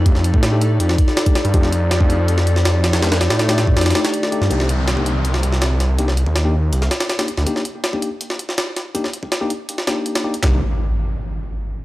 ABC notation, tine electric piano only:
X:1
M:4/4
L:1/16
Q:1/4=162
K:Cdor
V:1 name="Tine electric piano"
[A,DEG] z4 [A,DEG] z6 z [A,DEG] z2 | [A,DEG]2 z3 [A,DEG]2 z8 z | [A,DEG] z4 [A,DEG] z4 [A,DEG]4 [A,DEG] z | [B,DEG]2 z3 [B,DEG]2 z8 z |
[B,DEG] z4 [B,DEG] z6 z [B,DEG] z2 | [B,DEG]2 z3 [B,DEG]2 z8 z | [B,DEG] z4 [B,DEG] z4 [B,DEG]4 [B,DEG] z | [B,DEG]2 z12 z2 |]